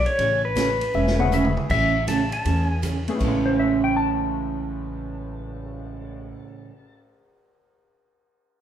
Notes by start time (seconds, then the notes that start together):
0.06 C#5, ride
0.19 A1 C#3 E3 A3 C#4 G#4, kick, ride
0.45 B4
0.55 C#3 E3 A3 C#4 G#4, kick, snare, hi-hat pedal, ride
0.81 ride
0.94 E1 C#3 E3 A3 C#4 G#4 E5
1.07 snare
1.19 A3 B3 C#4 E4 G#4 F#5, mid tom
1.32 C#3 E3 A3 C#4 G#4 E5, hi-hat pedal, mid tom
1.45 mid tom
1.57 mid tom
1.69 A1 C#3 E3 A3 C#4 G#4 E5, kick, crash
2.07 C#3 E3 A3 C#4 G#4 A5, kick, hi-hat pedal, ride
2.32 A5, ride
2.45 E2 C#3 E3 A3 C#4 G#4, kick, ride
2.67 G#5
2.82 C#3 E3 A3 C#4 G#4, kick, hi-hat pedal, ride
3.08 A3 B3 C#4 G#4, ride
3.15 A2 A3
3.19 A1 A2 C#3 E3 A3 B3 C#4, kick, crash
3.24 G#3 C#4
3.46 C5, cymbal swell
3.59 E5
3.84 G5
3.97 A5